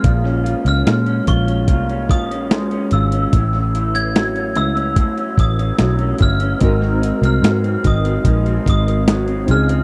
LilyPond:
<<
  \new Staff \with { instrumentName = "Glockenspiel" } { \time 4/4 \key bes \minor \tempo 4 = 73 f'''8. f'''8. des'''4 ees'''4 fes'''8~ | fes'''8. aes'''8. e'''4 ees'''4 f'''8~ | f'''8. f'''8. ees'''4 ees'''4 f'''8 | }
  \new Staff \with { instrumentName = "Synth keys" } { \time 4/4 \key bes \minor r1 | r1 | <c' ees' ges' bes'>2.~ <c' ees' ges' bes'>8 <c' ees' f' aes'>8 | }
  \new Staff \with { instrumentName = "Clean electric guitar" } { \time 4/4 \key bes \minor <bes, f'>16 des'16 f'16 des'16 aes16 des'16 f'16 des'16 <bes, f'>16 des'16 f'16 des'16 aes16 des'16 f'16 des'16 | <a, e'>16 cis'16 e'16 cis'16 fis16 cis'16 e'16 cis'16 <a, e'>16 cis'16 e'16 cis'16 fis16 cis'16 e'16 cis'16 | <aes, ees'>16 c'16 ees'16 c'16 ges16 c'16 ees'16 c'16 <aes, ees'>16 c'16 ees'16 c'16 ges16 c'16 des16 c'16 | }
  \new Staff \with { instrumentName = "Picked electric bass" } { \clef bass \time 4/4 \key bes \minor bes,,8. des,16 bes,8 bes,,8 c,8 bes,,4 aes,,8 | a,,4. cis,8. r16 a,,8 ces,8 g,,8 | aes,,8. c,16 aes,8 aes,,8 bes,,8 aes,,4 des,8 | }
  \new DrumStaff \with { instrumentName = "Drums" } \drummode { \time 4/4 <hh bd>16 sn16 hh16 hh16 <hh sn>16 hh16 <hh bd>16 hh16 <hh bd>16 hh16 <hh bd>16 hh16 <hh sn>16 hh16 hh16 hh16 | <hh bd>16 sn16 hh16 hh16 <hh sn>16 hh16 hh16 hh16 <hh bd>16 hh16 <hh bd>16 hh16 <hh sn>16 hh16 <hh bd>16 hh16 | <hh bd>16 sn16 hh16 hh16 <hh sn>16 hh16 <hh bd>16 hh16 <hh bd>16 hh16 <hh bd>16 hh16 <hh sn>16 hh16 hh16 hh16 | }
>>